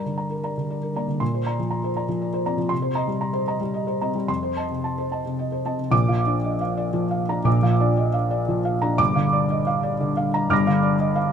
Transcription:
0.00 1.17 G2 soft
0.00 0.30 A#4 soft
0.00 0.44 D5 soft
0.00 0.18 A#5 soft
0.05 0.26 D3 soft
0.18 0.39 A#5 soft
0.30 0.51 A#4 soft
0.44 0.55 D5 soft
0.44 0.56 A#5 soft
0.57 0.78 D3 soft
0.70 0.91 D5 soft
0.83 1.03 A#4 soft
0.96 1.21 A#3 soft
0.96 1.07 D5 soft
0.96 1.07 A#5 soft
1.08 1.20 D3 soft
1.20 2.67 A#2 medium
1.20 1.40 C6 medium
1.34 1.54 C5 soft
1.46 1.57 D5 soft
1.46 1.57 A#5 soft
1.59 1.79 F3 soft
1.71 1.91 A#5 soft
1.84 2.04 C5 soft
1.96 2.07 D5 soft
1.96 2.08 A#5 soft
2.08 2.28 F3 soft
2.22 2.41 D5 soft
2.34 2.54 C5 soft
2.46 2.71 C4 soft
2.46 2.57 D5 soft
2.46 2.57 A#5 soft
2.58 2.71 F3 soft
2.69 4.23 C3 medium
2.69 2.90 C6 medium
2.82 3.03 C5 soft
2.95 3.07 D#5 soft
2.95 3.07 A#5 soft
3.07 3.29 G3 soft
3.21 3.42 A#5 medium
3.33 3.55 C5 medium
3.48 3.59 D#5 soft
3.48 3.60 A#5 medium
3.61 3.82 G3 soft
3.74 3.95 D#5 soft
3.87 4.09 C5 soft
4.01 4.29 C4 soft
4.01 4.14 D#5 soft
4.01 4.14 A#5 soft
4.15 4.29 G3 soft
4.28 5.88 F2 medium
4.28 4.51 C6 medium
4.43 4.65 C5 soft
4.57 4.69 D#5 soft
4.57 4.69 A5 soft
4.70 4.92 C3 soft
4.84 5.06 A5 soft
4.98 5.20 C5 soft
5.12 5.24 D#5 soft
5.12 5.24 A5 soft
5.25 5.47 C3 soft
5.39 5.60 D#5 soft
5.52 5.74 C5 soft
5.65 5.92 C4 soft
5.65 5.78 D#5 soft
5.65 5.78 A5 soft
5.79 5.92 C3 soft
5.91 7.41 A#1 medium
5.91 7.42 A#2 medium
5.91 6.19 D6 medium
6.08 6.37 F3 soft
6.08 6.36 F5 medium
6.27 6.54 D4 soft
6.27 6.54 D5 soft
6.44 6.61 D#5 soft
6.61 6.88 F5 medium
6.77 7.05 D5 medium
6.93 7.21 F3 medium
7.11 7.39 F5 soft
7.29 7.56 D4 medium
7.29 7.56 A#5 medium
7.44 8.94 A#1 medium
7.44 8.94 A#2 medium
7.44 7.73 D6 medium
7.62 7.90 F3 soft
7.62 7.90 F5 medium
7.80 8.07 D4 soft
7.80 8.07 D5 medium
7.97 8.14 D#5 soft
8.14 8.41 F5 medium
8.31 8.58 D5 medium
8.49 8.75 F3 medium
8.65 8.92 F5 medium
8.82 8.99 D4 medium
8.82 8.99 A#5 medium
8.98 10.46 G1 medium
8.98 10.46 G2 medium
8.98 9.26 D6 medium
9.15 9.43 D3 medium
9.15 9.43 F5 medium
9.33 9.60 D5 medium
9.50 9.67 D#5 medium
9.67 9.94 F5 medium
9.83 10.10 D5 medium
10.00 10.27 D3 medium
10.17 10.44 F5 medium
10.34 10.61 A#5 medium
10.49 11.32 G1 medium
10.49 11.32 G2 medium
10.49 10.77 D6 medium
10.49 11.32 F6 medium
10.53 11.32 A#6 medium
10.67 10.94 D3 medium
10.67 10.94 F5 medium
10.83 11.10 D5 medium
10.99 11.16 D#5 medium
11.16 11.32 F5 medium

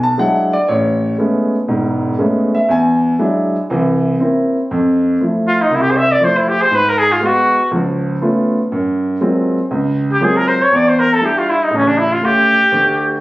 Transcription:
0.00 0.11 B1 medium
0.00 0.18 A5 medium
0.18 0.54 F#3 soft
0.18 0.54 G#3 soft
0.18 0.54 D4 soft
0.18 0.54 E4 medium
0.18 0.52 F#5 medium
0.53 0.68 D5 medium
0.68 1.12 A1 medium
0.68 1.15 C#5 medium
1.18 1.54 G#3 soft
1.18 1.55 A3 soft
1.18 1.55 B3 soft
1.18 1.55 C#4 medium
1.68 2.12 E1 medium
1.68 2.12 G#2 medium
2.19 2.55 G#3 soft
2.19 2.55 A3 soft
2.19 2.55 B3 soft
2.19 2.55 C#4 medium
2.55 2.69 E5 medium
2.69 3.12 E2 medium
2.69 3.17 G#5 medium
3.19 3.55 F#3 medium
3.19 3.55 G#3 soft
3.19 3.55 D4 medium
3.19 3.55 E4 medium
3.70 4.14 C2 medium
3.70 4.13 E3 medium
4.20 4.56 A#3 medium
4.20 4.56 C4 soft
4.20 4.56 E4 soft
4.71 5.14 F2 medium
5.21 5.56 F3 soft
5.21 5.57 A3 soft
5.21 5.57 E4 soft
5.47 5.63 F4 medium
5.62 5.76 D#4 medium
5.71 6.14 C2 medium
5.75 5.83 E4 medium
5.82 5.92 G4 medium
5.91 5.99 C5 medium
5.97 6.13 E5 medium
6.12 6.26 D5 medium
6.20 6.56 F3 soft
6.20 6.57 A3 soft
6.20 6.57 E4 medium
6.24 6.39 C5 medium
6.38 6.50 E4 medium
6.49 6.63 G4 medium
6.62 6.77 C5 medium
6.71 7.14 G#2 medium
6.75 6.91 B4 medium
6.89 7.00 A#4 medium
6.99 7.14 G#4 medium
7.12 7.27 F4 medium
7.20 7.57 G#3 soft
7.20 7.57 B3 soft
7.20 7.57 F#4 medium
7.26 7.73 F#4 medium
7.71 8.15 C#2 medium
7.71 8.15 F3 medium
8.21 8.57 A3 soft
8.21 8.57 B3 soft
8.21 8.57 C#4 soft
8.21 8.57 F4 medium
8.72 9.15 F#2 medium
9.21 9.57 F#3 soft
9.21 9.57 G#3 soft
9.21 9.57 A#3 soft
9.21 9.57 C4 soft
9.21 9.57 F4 medium
9.71 10.15 C#2 medium
10.12 10.26 G4 medium
10.20 10.57 F#3 medium
10.20 10.57 G#3 soft
10.20 10.57 A#3 soft
10.20 10.57 C4 soft
10.20 10.57 F4 medium
10.20 10.38 G#4 medium
10.37 10.50 A#4 medium
10.48 10.64 C5 medium
10.63 10.78 C#5 medium
10.72 11.15 E2 medium
10.76 10.90 D5 medium
10.88 11.01 C5 medium
10.99 11.15 A#4 medium
11.13 11.27 A4 medium
11.20 11.57 G3 soft
11.20 11.57 D4 soft
11.20 11.57 E4 medium
11.25 11.40 G4 medium
11.38 11.51 F4 medium
11.50 11.65 E4 medium
11.63 11.78 D#4 medium
11.70 12.15 A1 medium
11.70 12.14 C#3 medium
11.76 11.89 C#4 medium
11.88 12.00 D4 medium
11.98 12.14 E4 medium
12.13 12.27 F4 medium
12.21 12.57 A3 soft
12.21 12.58 C#4 soft
12.21 12.58 G4 soft
12.21 13.21 G4 medium
12.72 13.15 D2 medium

